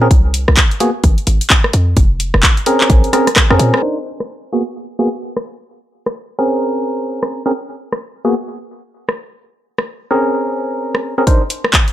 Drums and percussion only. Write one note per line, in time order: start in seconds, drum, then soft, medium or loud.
0.11 kick loud
0.11 closed hi-hat medium
0.34 open hi-hat loud
0.48 cross-stick medium
0.57 kick loud
0.57 clap loud
0.57 closed hi-hat medium
0.71 closed hi-hat soft
0.80 open hi-hat loud
1.04 kick loud
1.04 closed hi-hat medium
1.18 closed hi-hat soft
1.27 open hi-hat loud
1.41 closed hi-hat medium
1.50 kick loud
1.50 clap loud
1.50 closed hi-hat medium
1.64 cross-stick medium
1.73 open hi-hat loud
1.97 kick loud
1.97 closed hi-hat medium
2.20 open hi-hat loud
2.34 cross-stick medium
2.43 kick loud
2.43 clap loud
2.43 closed hi-hat medium
2.57 closed hi-hat soft
2.66 open hi-hat loud
2.81 clap medium
2.90 kick loud
2.90 closed hi-hat medium
3.04 closed hi-hat soft
3.13 cross-stick medium
3.13 open hi-hat loud
3.27 cross-stick medium
3.27 closed hi-hat medium
3.36 kick loud
3.36 cross-stick medium
3.36 clap loud
3.36 closed hi-hat medium
3.51 cross-stick medium
3.59 open hi-hat loud
3.74 cross-stick medium
4.20 cross-stick medium
5.37 cross-stick medium
6.06 cross-stick medium
7.23 cross-stick medium
7.93 cross-stick medium
9.09 cross-stick medium
9.78 cross-stick medium
10.95 cross-stick medium
11.27 kick loud
11.27 closed hi-hat medium
11.50 open hi-hat loud
11.64 cross-stick medium
11.73 kick loud
11.73 clap loud
11.73 closed hi-hat medium
11.88 closed hi-hat soft